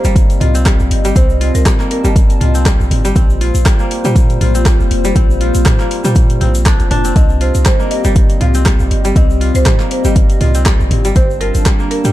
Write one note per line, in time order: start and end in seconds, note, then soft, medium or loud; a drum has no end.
0.00 1.72 A#3 medium
0.00 0.54 C4 medium
0.00 3.12 C4 medium
0.00 0.40 F4 medium
0.00 1.14 G4 medium
0.00 0.42 C5 loud
0.00 3.12 D#5 loud
0.04 0.38 G1 loud
0.04 0.65 G3 loud
0.04 closed hi-hat soft
0.04 shaker medium
0.16 kick loud
0.16 closed hi-hat medium
0.16 shaker medium
0.30 closed hi-hat soft
0.30 shaker soft
0.41 0.76 C2 medium
0.41 1.40 F4 medium
0.41 1.12 D#5 loud
0.41 mid tom medium
0.41 open hi-hat medium
0.55 1.15 C4 medium
0.55 closed hi-hat soft
0.55 shaker medium
0.66 1.04 G3 medium
0.66 kick loud
0.66 cross-stick loud
0.66 clap loud
0.66 closed hi-hat medium
0.66 shaker medium
0.80 0.89 A#1 medium
0.80 shaker soft
0.91 1.12 G1 medium
0.91 open hi-hat loud
1.05 1.65 G3 loud
1.05 closed hi-hat soft
1.05 shaker medium
1.16 1.51 C2 loud
1.16 2.54 C4 medium
1.16 1.56 C5 loud
1.16 3.14 A5 medium
1.16 kick loud
1.16 closed hi-hat medium
1.16 shaker medium
1.30 shaker soft
1.41 2.40 F4 medium
1.41 open hi-hat medium
1.55 1.64 C2 medium
1.55 1.90 A#4 medium
1.55 closed hi-hat soft
1.55 shaker medium
1.66 2.03 G3 medium
1.66 kick loud
1.66 cross-stick loud
1.66 clap loud
1.66 closed hi-hat medium
1.66 mid tom medium
1.66 shaker medium
1.80 3.72 A#3 medium
1.80 clap soft
1.80 shaker soft
1.91 2.87 A#4 medium
1.91 open hi-hat loud
2.04 2.38 G1 loud
2.04 2.65 G3 loud
2.04 closed hi-hat soft
2.04 shaker medium
2.16 kick loud
2.16 closed hi-hat medium
2.16 shaker medium
2.30 closed hi-hat soft
2.30 shaker soft
2.41 2.76 C2 loud
2.41 3.41 F4 medium
2.41 mid tom medium
2.41 open hi-hat loud
2.55 3.15 C4 medium
2.55 closed hi-hat soft
2.55 shaker medium
2.66 3.03 G3 medium
2.66 kick loud
2.66 cross-stick loud
2.66 clap loud
2.66 closed hi-hat medium
2.66 shaker medium
2.80 2.89 A#1 medium
2.80 shaker soft
2.91 3.12 G1 medium
2.91 mid tom medium
2.91 open hi-hat medium
3.05 3.21 G3 loud
3.05 closed hi-hat soft
3.05 shaker medium
3.16 3.51 A#1 loud
3.16 7.12 A#3 medium
3.16 4.54 C4 medium
3.16 7.12 F4 medium
3.16 7.12 C5 loud
3.16 kick loud
3.16 closed hi-hat medium
3.16 shaker medium
3.30 shaker soft
3.41 4.40 F4 medium
3.41 open hi-hat medium
3.54 3.64 A#1 medium
3.54 closed hi-hat soft
3.54 shaker medium
3.66 4.04 G3 medium
3.66 kick loud
3.66 cross-stick loud
3.66 clap loud
3.66 closed hi-hat medium
3.66 shaker medium
3.79 5.73 A#3 medium
3.79 shaker soft
3.91 open hi-hat medium
4.05 4.38 A#2 loud
4.05 4.65 G3 loud
4.05 closed hi-hat soft
4.05 shaker medium
4.16 kick loud
4.16 closed hi-hat medium
4.16 shaker medium
4.30 closed hi-hat soft
4.30 shaker soft
4.41 4.76 A#1 loud
4.41 5.40 F4 medium
4.41 mid tom medium
4.41 open hi-hat medium
4.55 5.15 C4 medium
4.55 closed hi-hat soft
4.55 shaker medium
4.66 5.03 G3 medium
4.66 kick loud
4.66 cross-stick loud
4.66 clap medium
4.66 closed hi-hat medium
4.66 shaker medium
4.80 4.89 F1 medium
4.80 shaker soft
4.91 5.12 F1 medium
4.91 open hi-hat medium
5.05 5.65 G3 loud
5.05 closed hi-hat soft
5.05 shaker medium
5.15 5.51 A#1 loud
5.15 6.40 C4 medium
5.15 kick loud
5.15 closed hi-hat medium
5.15 shaker medium
5.30 shaker soft
5.41 6.92 F4 medium
5.41 open hi-hat medium
5.54 5.64 A#1 medium
5.54 closed hi-hat soft
5.54 shaker medium
5.66 6.03 G3 medium
5.66 kick loud
5.66 cross-stick loud
5.66 clap loud
5.66 closed hi-hat medium
5.66 mid tom medium
5.66 shaker medium
5.79 7.73 A#3 medium
5.79 clap soft
5.79 shaker soft
5.91 open hi-hat medium
6.05 6.38 A#2 loud
6.05 7.21 G3 loud
6.05 closed hi-hat soft
6.05 shaker medium
6.15 kick loud
6.15 closed hi-hat medium
6.15 shaker medium
6.30 closed hi-hat soft
6.30 shaker soft
6.41 6.76 A#1 medium
6.41 7.04 C4 medium
6.41 mid tom medium
6.41 open hi-hat medium
6.55 closed hi-hat soft
6.55 shaker medium
6.65 6.90 D4 medium
6.65 kick loud
6.65 cross-stick loud
6.65 clap loud
6.65 closed hi-hat medium
6.65 shaker medium
6.79 6.89 F1 medium
6.79 closed hi-hat soft
6.79 shaker soft
6.91 7.12 F1 medium
6.91 8.59 D4 loud
6.91 mid tom medium
6.91 open hi-hat medium
7.05 7.15 C4 medium
7.05 closed hi-hat soft
7.05 shaker medium
7.16 7.51 C2 loud
7.16 8.54 C4 medium
7.16 11.12 C4 medium
7.16 11.12 G4 medium
7.16 9.14 D#5 medium
7.16 7.42 D#5 loud
7.16 kick loud
7.16 closed hi-hat medium
7.16 shaker medium
7.29 shaker soft
7.41 8.40 F4 medium
7.41 7.65 C5 medium
7.41 open hi-hat medium
7.55 7.64 C2 medium
7.55 closed hi-hat soft
7.55 shaker medium
7.66 8.03 G3 medium
7.66 7.89 C5 medium
7.66 kick loud
7.66 cross-stick loud
7.66 clap loud
7.66 closed hi-hat medium
7.66 shaker medium
7.80 9.73 A#3 medium
7.80 shaker soft
7.91 8.43 D#5 loud
7.91 open hi-hat medium
8.04 8.38 G1 loud
8.04 8.65 G3 loud
8.04 closed hi-hat soft
8.04 shaker medium
8.15 kick loud
8.15 closed hi-hat medium
8.15 shaker medium
8.30 closed hi-hat soft
8.30 shaker soft
8.41 8.76 C2 loud
8.41 9.40 F4 medium
8.41 9.19 F5 loud
8.41 mid tom medium
8.41 open hi-hat medium
8.54 9.16 C4 medium
8.54 closed hi-hat soft
8.54 shaker medium
8.66 9.03 G3 medium
8.66 kick loud
8.66 cross-stick loud
8.66 clap loud
8.66 closed hi-hat medium
8.66 shaker medium
8.79 8.89 A#1 medium
8.79 shaker soft
8.91 9.12 G1 loud
8.91 open hi-hat medium
9.05 9.65 G3 loud
9.05 closed hi-hat soft
9.05 shaker medium
9.16 9.51 C2 loud
9.16 10.54 C4 medium
9.16 11.14 D#5 medium
9.16 9.56 D#5 loud
9.16 kick loud
9.16 closed hi-hat medium
9.16 shaker medium
9.30 shaker soft
9.41 10.40 F4 medium
9.41 open hi-hat medium
9.55 9.64 C2 medium
9.55 9.90 C5 loud
9.55 closed hi-hat soft
9.55 shaker medium
9.66 10.04 G3 medium
9.66 kick loud
9.66 cross-stick loud
9.66 clap loud
9.66 closed hi-hat medium
9.66 mid tom medium
9.66 shaker medium
9.79 11.73 A#3 medium
9.79 clap soft
9.79 shaker soft
9.91 10.87 C5 medium
9.91 open hi-hat medium
10.05 10.38 G1 loud
10.05 10.65 G3 loud
10.05 closed hi-hat soft
10.05 shaker medium
10.16 kick loud
10.16 closed hi-hat medium
10.16 shaker medium
10.30 closed hi-hat soft
10.30 shaker soft
10.41 10.76 C2 loud
10.41 11.41 F4 medium
10.41 mid tom medium
10.41 open hi-hat medium
10.55 11.16 C4 medium
10.55 closed hi-hat soft
10.55 shaker medium
10.66 11.04 G3 medium
10.66 kick loud
10.66 cross-stick loud
10.66 clap loud
10.66 closed hi-hat medium
10.66 shaker medium
10.80 10.89 A#1 medium
10.80 shaker soft
10.91 11.12 G1 medium
10.91 mid tom medium
10.91 open hi-hat medium
11.05 11.21 G3 loud
11.05 closed hi-hat soft
11.05 shaker medium
11.16 11.51 G1 loud
11.16 12.12 G3 medium
11.16 12.12 C4 medium
11.16 12.12 D4 medium
11.16 11.27 C5 loud
11.16 12.12 A5 loud
11.16 kick loud
11.16 closed hi-hat medium
11.16 shaker medium
11.30 shaker soft
11.41 12.12 F4 medium
11.41 11.87 A#4 loud
11.41 open hi-hat medium
11.55 11.64 G1 medium
11.55 closed hi-hat soft
11.55 shaker medium
11.65 12.03 G3 medium
11.65 kick loud
11.65 cross-stick loud
11.65 clap loud
11.65 closed hi-hat medium
11.65 shaker medium
11.79 12.12 A#3 medium
11.79 shaker soft
11.91 12.12 A#4 medium
11.91 open hi-hat medium
12.04 12.12 G2 loud
12.04 12.12 G3 loud
12.04 closed hi-hat soft
12.04 shaker medium